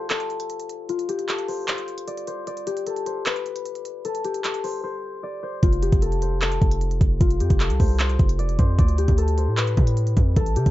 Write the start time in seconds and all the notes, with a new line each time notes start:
Already playing: F4 G4 C5 D5
0.10 A4, clap, closed hi-hat
0.20 closed hi-hat
0.30 closed hi-hat
0.40 closed hi-hat
0.50 closed hi-hat
0.60 closed hi-hat
0.69 closed hi-hat
0.89 F4, closed hi-hat
0.99 closed hi-hat
1.09 G4, closed hi-hat
1.19 closed hi-hat
1.28 A4, clap, closed hi-hat
1.39 closed hi-hat
1.48 C5, open hi-hat
1.68 C5, clap, closed hi-hat
1.78 closed hi-hat
1.88 closed hi-hat
1.98 closed hi-hat
2.08 D5, closed hi-hat
2.17 closed hi-hat
2.27 C5, closed hi-hat
2.47 D5, closed hi-hat
2.57 closed hi-hat
2.67 G4, closed hi-hat
2.77 closed hi-hat
2.87 A4, closed hi-hat
2.96 closed hi-hat
3.06 C5, closed hi-hat
3.26 B4, clap, closed hi-hat
3.36 closed hi-hat
3.46 closed hi-hat
3.56 closed hi-hat
3.66 closed hi-hat
3.75 closed hi-hat
3.85 closed hi-hat
4.05 A4, closed hi-hat
4.15 closed hi-hat
4.25 G4, closed hi-hat
4.34 closed hi-hat
4.44 A4, clap, closed hi-hat
4.54 closed hi-hat
4.64 C5, open hi-hat
4.84 C5
5.23 D5
5.43 C5
5.63 F1 F4, kick, closed hi-hat
5.73 closed hi-hat
5.83 G4, closed hi-hat
5.92 F1, kick, closed hi-hat
6.02 A4, closed hi-hat
6.12 closed hi-hat
6.22 C5, closed hi-hat
6.42 A4, clap, closed hi-hat
6.52 closed hi-hat
6.62 F1, kick, closed hi-hat
6.71 closed hi-hat
6.81 closed hi-hat
6.91 closed hi-hat
7.01 F1, kick, closed hi-hat
7.21 F1 F4, kick, closed hi-hat
7.31 closed hi-hat
7.40 F2 G4, closed hi-hat
7.50 F1, kick, closed hi-hat
7.60 A4, clap, closed hi-hat
7.70 C2, closed hi-hat
7.80 C2 C5, kick, open hi-hat
8.00 C5, clap, closed hi-hat
8.09 closed hi-hat
8.19 F1, kick, closed hi-hat
8.29 closed hi-hat
8.39 D5, closed hi-hat
8.49 closed hi-hat
8.59 F2 C5, kick, closed hi-hat
8.79 D2 D5, kick, closed hi-hat
8.88 closed hi-hat
8.98 G4, closed hi-hat
9.08 D2, kick, closed hi-hat
9.18 A4, closed hi-hat
9.28 closed hi-hat
9.38 C5, closed hi-hat
9.48 A2
9.57 B4, clap, closed hi-hat
9.67 closed hi-hat
9.77 A2, kick, closed hi-hat
9.87 closed hi-hat
9.97 closed hi-hat
10.07 closed hi-hat
10.17 F2, kick, closed hi-hat
10.36 A1 A4, kick, closed hi-hat
10.46 closed hi-hat
10.56 C3 G4, closed hi-hat
10.66 A1, kick, closed hi-hat